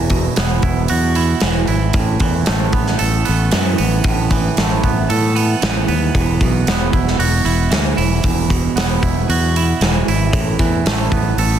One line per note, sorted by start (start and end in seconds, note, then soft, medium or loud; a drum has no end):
0.00 0.27 E1 medium
0.00 1.16 E2 medium
0.00 0.93 E3 medium
0.00 0.36 B3 medium
0.00 0.63 E4 medium
0.00 0.11 F#4 medium
0.10 1.43 B2 medium
0.10 kick medium
0.10 open hi-hat soft
0.36 0.59 E1 medium
0.36 1.97 B3 medium
0.36 snare loud
0.36 open hi-hat medium
0.62 0.85 E1 medium
0.62 1.16 E4 medium
0.62 kick medium
0.62 open hi-hat soft
0.88 1.33 E2 medium
0.88 1.95 F#4 medium
0.88 open hi-hat medium
1.15 1.68 E4 medium
1.15 open hi-hat soft
1.40 1.64 E1 medium
1.40 2.21 E3 medium
1.40 snare medium
1.40 open hi-hat medium
1.67 1.90 G#1 medium
1.67 2.72 E4 medium
1.67 open hi-hat soft
1.93 2.16 A1 medium
1.93 3.26 A2 medium
1.93 kick medium
1.93 open hi-hat medium
2.20 2.42 E2 medium
2.20 3.51 E3 medium
2.20 kick medium
2.20 open hi-hat soft
2.46 2.70 A1 medium
2.46 3.79 A3 medium
2.46 snare loud
2.46 open hi-hat medium
2.73 2.95 A1 medium
2.73 3.25 B3 medium
2.73 kick medium
2.73 open hi-hat soft
2.87 snare soft
2.99 3.22 A1 medium
2.99 4.31 A4 medium
2.99 open hi-hat medium
3.25 3.49 A1 medium
3.25 3.78 B3 medium
3.25 open hi-hat soft
3.51 3.74 F#2 medium
3.51 4.31 E3 medium
3.51 snare medium
3.51 open hi-hat medium
3.78 4.01 A1 medium
3.78 4.83 B3 medium
3.78 open hi-hat medium
4.04 4.48 A1 medium
4.04 5.36 A2 medium
4.04 kick medium
4.04 open hi-hat medium
4.31 5.61 E3 medium
4.31 kick medium
4.31 open hi-hat soft
4.57 4.79 A1 medium
4.57 5.89 A3 medium
4.57 snare loud
4.57 open hi-hat medium
4.84 5.05 A1 medium
4.84 5.35 B3 medium
4.84 kick medium
4.84 open hi-hat soft
5.10 5.53 A2 medium
5.10 6.15 A4 medium
5.10 open hi-hat medium
5.35 5.88 B3 medium
5.35 open hi-hat soft
5.62 5.84 A1 medium
5.62 7.22 E3 medium
5.62 snare medium
5.62 open hi-hat medium
5.88 6.10 D#2 medium
5.88 6.68 B3 medium
5.88 open hi-hat soft
6.15 6.36 E1 medium
6.15 7.46 E2 medium
6.15 kick medium
6.15 open hi-hat medium
6.41 6.63 B1 medium
6.41 7.73 B2 medium
6.41 kick medium
6.41 open hi-hat soft
6.67 6.89 E1 medium
6.67 8.75 B3 medium
6.67 snare loud
6.67 open hi-hat medium
6.93 7.15 E1 medium
6.93 7.45 E4 medium
6.93 kick medium
6.93 open hi-hat soft
7.08 snare soft
7.19 7.40 E1 medium
7.19 8.50 F#4 medium
7.19 open hi-hat medium
7.45 7.67 E1 medium
7.45 7.97 E4 medium
7.45 open hi-hat soft
7.71 7.93 D2 medium
7.71 9.33 E3 medium
7.71 snare medium
7.71 open hi-hat medium
7.97 8.20 E1 medium
7.97 9.02 E4 medium
7.97 open hi-hat soft
8.24 8.67 E1 medium
8.24 9.55 E2 medium
8.24 kick medium
8.24 open hi-hat medium
8.50 9.81 B2 medium
8.50 kick medium
8.50 open hi-hat soft
8.76 8.97 E1 medium
8.76 10.36 B3 medium
8.76 snare medium
8.76 open hi-hat medium
9.02 9.24 E1 medium
9.02 9.56 E4 medium
9.02 kick medium
9.02 open hi-hat soft
9.29 9.72 E2 medium
9.29 10.34 F#4 medium
9.29 open hi-hat medium
9.56 10.08 E4 medium
9.56 open hi-hat soft
9.81 10.02 E1 medium
9.81 10.59 E3 medium
9.81 snare medium
9.81 open hi-hat medium
10.08 10.29 G#1 medium
10.08 11.12 E4 medium
10.08 open hi-hat soft
10.33 10.55 A1 medium
10.33 11.59 A2 medium
10.33 kick loud
10.33 open hi-hat medium
10.59 10.81 E2 medium
10.59 11.59 E3 medium
10.59 kick medium
10.59 open hi-hat soft
10.86 11.08 A1 medium
10.86 11.59 A3 medium
10.86 snare loud
10.86 open hi-hat medium
11.12 11.33 A1 medium
11.12 11.59 B3 medium
11.12 kick medium
11.12 open hi-hat soft
11.38 11.59 A1 medium
11.38 11.59 A4 medium
11.38 open hi-hat medium